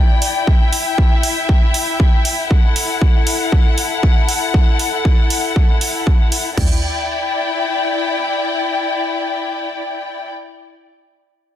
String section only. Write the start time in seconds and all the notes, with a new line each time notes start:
Already playing: E4 D5 G5
0.47 E5
2.51 A4 F#5
6.58 E4 D5 G5